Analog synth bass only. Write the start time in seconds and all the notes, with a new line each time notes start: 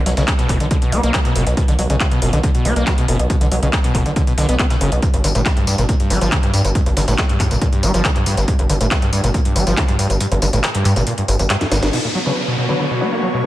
0.06 B1
0.17 B1
0.49 F#1
0.60 B1
0.92 B1
1.03 B1
1.36 F#1
1.47 B1
1.68 B1
1.79 B1
1.90 B1
2.22 F#1
2.33 B1
2.65 B1
2.76 B1
3.08 F#1
3.19 B1
3.41 B1
3.51 B1
3.63 B1
3.95 F#1
4.06 B1
4.38 B1
4.49 B1
4.81 F#1
4.92 B1
5.14 G1
5.24 G1
5.35 G1
5.67 G2
5.78 G1
6.10 G1
6.21 G1
6.54 G2
6.65 G1
6.86 G1
6.97 G1
7.08 G1
7.40 G2
7.51 G1
7.83 G1
7.94 G1
8.26 G2
8.37 G1
8.59 G1
8.70 G1
8.81 G1
9.13 G2
9.24 G1
9.56 G1
9.67 G1
9.99 G2
10.10 G1
10.32 G1
10.42 G1
10.53 G1
10.85 G2
10.96 G1
11.28 G1
11.39 G1
11.72 G1
11.83 G1